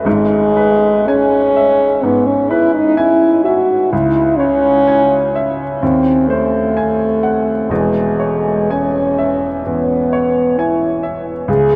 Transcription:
0.04 G#1 G#2 G#3
0.57 B4
1.07 C#4 G#5
1.56 E5
2.03 G#2 B3
2.26 C#4
2.50 E4 B4
2.74 D#4
2.97 E4 G#5
3.44 F#4 E5
3.92 C#2 E4
4.38 C#4 C#5
4.87 G#5
5.36 E5
5.81 D#2 C4
6.29 A3 C5
6.77 G#5
7.23 F#5
7.69 E1 E2 G#3
8.20 C#5
8.71 C#4 G#5
9.18 E5
9.66 E2 B3
10.13 C#5
10.58 E4 G#5
11.03 E5
11.48 C#2 G#4

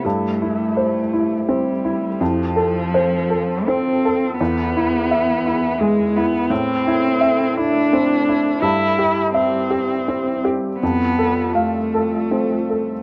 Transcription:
Already playing: A3 E4
0.03 G2 A3 G4
0.42 E4
0.77 C5
1.13 E4
1.47 G3 C4
1.85 E4
2.20 F2 F3 C4 F4 A4
2.56 A4
2.94 C5
3.30 A4
3.67 C4
4.05 A4
4.38 E2 B3 E4 G#4
4.76 E4
5.11 E5
5.46 E4
5.81 G#3
6.16 B3 E4
6.50 A2 A3 C4 A4
6.87 E4
7.21 E5
7.56 D4 E4
7.93 C4
8.29 E4
8.62 G2 G3 E4 G4
8.99 G4
9.34 C4 E5
9.71 G4
10.08 C4
10.45 G4
10.79 F2 B3 F4 A4
11.18 A4
11.53 A3 F5
11.94 A4
12.31 C4
12.70 A4

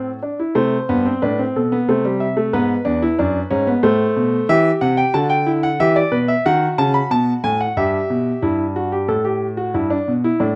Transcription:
Already playing: A2 A4
0.23 D4
0.40 E4
0.55 C3 A3 C5
0.89 G2 B3
1.05 C4
1.22 A2 D4 B4
1.39 C4
1.56 B2 A4
1.72 B3
1.88 C3 A3 C5
2.05 G3
2.20 E5
2.37 A3
2.53 G#2 B3 B4
2.85 E2 D4
3.02 E4
3.19 F#2 D4
3.51 G#2 C#4
3.67 B3
3.83 A2 A3 C5
4.16 B2
4.49 E3 G4 E5
4.81 C3 F#5
4.97 G5
5.14 D3 F#4 A5
5.30 G5
5.46 E4
5.63 F#5
5.80 E3 G4 E5
5.96 D5
6.12 B2 B4
6.28 E5
6.46 D#3 F#4 F#5
6.78 C#3 A5
6.94 B5
7.11 B2 A5
7.44 A2 G#5
7.61 F#5
7.77 G2 G4 E5
8.10 B2
8.42 G2 E4
8.76 F#4
8.92 G4
9.08 A2 A4
9.25 G4
9.57 F#4
9.74 G2 E4
9.90 D4
10.08 B2
10.24 E4
10.40 A2 D4

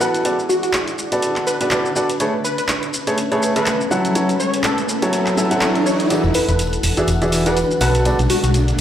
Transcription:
Already playing: E4 D5 F#5
0.01 B3 D4 F#4 A4 B4 F#5, shaker
0.14 closed hi-hat, shaker
0.21 B4
0.25 B3 F#4 A4 B4 D5, closed hi-hat, shaker
0.39 shaker
0.49 F#4, shaker
0.57 A5
0.63 F#4, closed hi-hat, shaker
0.73 clap, closed hi-hat, shaker
0.88 closed hi-hat, shaker
0.98 shaker
1.12 B3 F#4 A4 B4 D5, closed hi-hat, shaker
1.22 closed hi-hat, shaker
1.36 clap, closed hi-hat, shaker
1.47 B4, shaker
1.61 B3 F#4 A4 B4 D5, closed hi-hat, shaker
1.71 B3 F#4 A4 B4 D5, clap, closed hi-hat, shaker
1.86 shaker
1.96 F#4 A4 B4 D5, shaker
2.10 closed hi-hat, shaker
2.20 A3 C#4 G#4 A4 B4 C#5, closed hi-hat, riser, shaker
2.37 A4
2.44 B4, shaker
2.58 B4, closed hi-hat, shaker
2.68 clap, closed hi-hat, shaker
2.83 closed hi-hat, shaker
2.94 G#5, shaker
3.07 A3 G#4 A4 B4 C#5, closed hi-hat, shaker
3.18 closed hi-hat, shaker
3.32 A3 G#4 A4 B4 C#5, closed hi-hat, shaker
3.42 shaker
3.56 A3 G#4 A4 B4 E5, closed hi-hat, shaker
3.66 clap, closed hi-hat, shaker
3.81 shaker
3.91 F#3 E4 F#4 A4 F#5, shaker
4.05 closed hi-hat, shaker
4.15 F#3 E4 F#4 A4 C#5, closed hi-hat, shaker
4.29 closed hi-hat, shaker
4.40 C#5, shaker
4.54 closed hi-hat, shaker
4.64 A4, clap, closed hi-hat, shaker
4.78 closed hi-hat, shaker
4.89 F#5, shaker
5.02 F#3 E4 F#4 A4 C#5, closed hi-hat, shaker
5.13 closed hi-hat, shaker
5.26 clap, closed hi-hat, shaker
5.37 F#3 E4 F#4 A4 E5, shaker
5.51 F#3 E4 F#4 A4 F#5, closed hi-hat, shaker
5.61 clap, closed hi-hat, shaker
5.75 closed hi-hat, shaker
5.86 C#5, shaker
6.00 closed hi-hat, shaker
6.10 E3 D4 F#4 G#4 D5 E5, closed hi-hat, tambourine, riser, shaker
6.24 E1, tambourine
6.34 B4, open hi-hat, tambourine, shaker
6.49 E1 B4, closed hi-hat, tambourine, shaker
6.59 closed hi-hat, tambourine, shaker
6.73 closed hi-hat, tambourine, shaker
6.83 E1, open hi-hat, tambourine, shaker
6.97 E3 F#4 G#4 D5 E5, closed hi-hat, tambourine, shaker
7.07 E1, closed hi-hat, tambourine, shaker
7.22 E3 F#4 G#4 D5 E5, closed hi-hat, tambourine, shaker
7.32 open hi-hat, tambourine, shaker
7.46 E3 F#4 G#4 B4 D5 F#5, closed hi-hat, tambourine, shaker
7.57 closed hi-hat, tambourine, shaker
7.71 tambourine, shaker
7.81 B1 B3 F#4 A4 B4 F#5, open hi-hat, tambourine, shaker
7.94 closed hi-hat, tambourine, shaker
8.05 B3 F#4 A4 B4 D5 A5, closed hi-hat, tambourine, shaker
8.19 B1, closed hi-hat, tambourine, shaker
8.30 F#4, open hi-hat, tambourine, shaker
8.44 B1 F#4, closed hi-hat, tambourine, shaker
8.54 closed hi-hat, tambourine, shaker
8.68 closed hi-hat, tambourine, shaker

